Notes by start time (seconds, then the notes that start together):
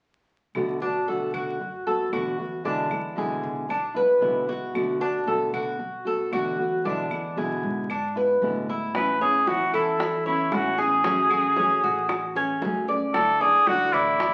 0.55 B1 B2 D3 A3 B3 F#4, claves
0.81 A3 B3 D4 F#4
1.08 B2 D3 A3 B3 F#4 A4
1.34 F#2 F#4, claves
1.60 muted nylon-string guitar stroke
1.87 A3 B3 F#4 A4
2.12 E2 B2 D3 A3 B3 F#4, claves
2.39 A3 B3 F#4
2.64 B2 D3 G#3 B3 D4 E4
2.90 G#3 B3 E4, claves
3.15 B2 D3 G#3 B3 E4 G#4
3.43 B1
3.68 D4, muted nylon-string guitar stroke, claves
3.94 G#3 B3 E4 B4
4.20 B1 B2 D3 G#3 B3 E4
4.47 G#3 B3 E4 F#4
4.74 B2 D3 A3 B3 F#4, claves
5.00 A3 B3 D4 F#4
5.26 B2 D3 A3 B3 F#4 A4
5.53 B2 F#4, claves
5.79 muted nylon-string guitar stroke
6.05 A3 B3 F#4 A4
6.31 E2 B2 D3 A3 B3 F#4, claves
6.58 A3 B3 F#4
6.84 B2 D3 G#3 B3 D4 E4
7.11 G#3 B3 E4, claves
7.36 B2 D3 G#3 B3 E4 G#4
7.63 G#2
7.90 D4, muted nylon-string guitar stroke, claves
8.16 G#3 B3 E4 B4
8.42 A2 B2 D3 G#3 B3 E4
8.68 G#3 B3 E4
8.94 E3 B3 C#4 E4 B4, high bongo, claves
9.21 B3 C#4 E4 G#4 C#5
9.46 E3 B3 C#4 E4 F#4, high bongo
9.73 E2 E4 A4, high bongo, claves
9.99 muted nylon-string guitar stroke, high bongo
10.25 B3 C#4 E4 C#5, high bongo
10.52 A1 E3 B3 C#4 E4 F#4, high bongo, low bongo, claves
10.78 B3 C#4 G#4, high bongo
11.04 F#3 A3 C#4 G#4, high bongo
11.30 A3 C#4 F#4 G#4, claves
11.56 F#3 A3 C#4 G#4 C#5, high bongo
11.83 A1 F#4, high bongo
12.09 muted nylon-string guitar stroke, high bongo, claves
12.36 A3 C#4 G#4, high bongo
12.61 D2 F#3 A3 C#4 G#4, high bongo, low bongo
12.88 A3 C#4 G#4 D5, high bongo
13.14 D3 A3 D4 E4 A4, high bongo, claves
13.40 A3 D4 E4 G#4 D5
13.67 D3 A3 D4 E4 F#4, high bongo
13.93 A1 E4 D5, high bongo, claves
14.20 muted nylon-string guitar stroke, high bongo